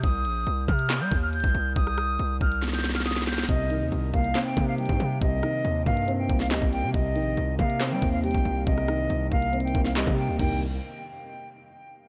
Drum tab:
CC |------------------------------------------------------------------------------------------------|------------------------------------------------------------------------------------------------|------------------------------------------------------------------------------------------------|------------------------------------------------------------------------------------------------|
HH |x-----------x-----------x-----------------x-----x-----------------------x---x---x---x-----------|x-----------x-----------x-----------------x-----x---x---x---------------------------o-----------|x-----------x-----------x-----------------x-----x-----------------------x---x---x---x-----------|x-----------x-----------x-----------------x-----x-----------------------------------x-----------|
CP |------------------------------------------------x-----------------------------------------------|------------------------------------------------------------------------------------------------|------------------------------------------------x-----------------------------------------------|------------------------------------------------------------------------x-----------------------|
SD |------------------------------------------------o-----------------------------------------------|------r-----r-----------------------------------o--o--o--o--o--o--o--o--o--o--o--o--o--o--o--o--|------------------------------------------------o-----------------------------------------------|------------r-----------------------------------------------------o-----o-----------------------|
FT |------------------------------------------------------------------------------------------------|------------------------------------------------------------------------------------------------|------------------------------------------------------------------------------------------------|------------------------------------------------------------------------------------------------|
BD |o-----------------------------------o-----------------------o-----------------o-----------------|o-----------------------------------o-----------------------------------------------------------|o-----------------------------------o-----------------------o-----------------o-----------------|o-----------------------------------o-----------------------o-----------------o-----------------|

CC |------------------------------------------------------------------------------------------------|------------------------------------------------------------------------------------------------|x-----------------------------------------------------------------------------------------------|
HH |x-----------x-----------x-----------------x-----x-----------------------x---x---x---x-----------|x-----------x-----------x-----------------x-----x---x---x---------------------------o-----------|------------------------------------------------------------------------------------------------|
CP |------------------------------------------------x-----------------------------------------------|------------------------------------------------------------------------x-----------------------|------------------------------------------------------------------------------------------------|
SD |------------------------------------------------o-----------------------------------------------|------r-----r-----------------------------------------------------o-----o-----------------------|------------------------------------------------------------------------------------------------|
FT |------------------------------------------------------------------------------------------------|------------------------------------------------------------------------------------------------|o-----------------------------------------------------------------------------------------------|
BD |o-----------------------------------o-----------------------o-----------------o-----------------|o-----------------------------------o-----------------------o-----------------o-----------------|o-----------------------------------------------------------------------------------------------|